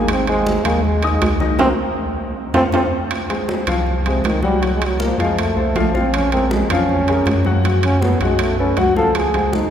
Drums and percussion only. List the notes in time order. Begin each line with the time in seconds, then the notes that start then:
0.08 high conga, high timbale
0.27 high conga, high timbale
0.46 high conga, low timbale
0.65 high conga, low conga, high timbale
0.84 high conga
1.03 high conga, high timbale
1.22 high conga, high timbale, low timbale
1.40 high conga
1.59 high conga, high timbale
2.54 high conga, high timbale
2.72 high conga, high timbale
3.11 high conga, high timbale
3.30 high conga, high timbale
3.49 high conga, low timbale
3.67 high conga, low conga, high timbale
3.87 high conga, low conga
4.06 high conga, high timbale
4.24 high conga, high timbale, low timbale
4.43 high conga
4.62 high conga, high timbale
4.81 high conga, high timbale
5.00 high conga, low timbale
5.20 high timbale
5.38 high conga, high timbale
5.57 high conga
5.76 high conga, high timbale, low timbale
5.95 high conga
6.14 high conga, high timbale
6.32 high conga, high timbale
6.51 high conga, low timbale
6.70 high conga, low conga, high timbale
6.89 high conga, low conga
7.07 high conga, high timbale
7.26 high conga, high timbale, low timbale
7.45 high conga
7.64 high conga, high timbale
7.83 high conga, high timbale
8.02 high conga, low timbale
8.21 high timbale
8.39 high conga, high timbale
8.59 high conga
8.77 high conga, high timbale, low timbale
8.96 high conga
9.15 high conga, high timbale
9.34 high conga, high timbale
9.53 high conga, low timbale